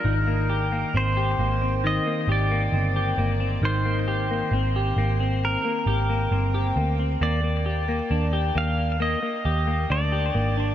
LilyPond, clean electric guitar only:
\new Staff \with { instrumentName = "Clean electric guitar" } { \time 4/4 \key aes \lydian \tempo 4 = 67 ees16 bes16 g'16 bes16 c'16 g'16 bes16 c'16 ees16 bes16 g'16 bes16 c'16 g'16 bes16 c'16 | ees16 bes16 g'16 bes16 c'16 g'16 bes16 c'8 bes16 g'16 bes16 c'16 g'16 bes16 c'16 | bes16 bes16 g'16 bes16 d'16 g'16 bes8 bes16 bes16 g'16 bes16 d'16 g'16 bes16 d'16 | }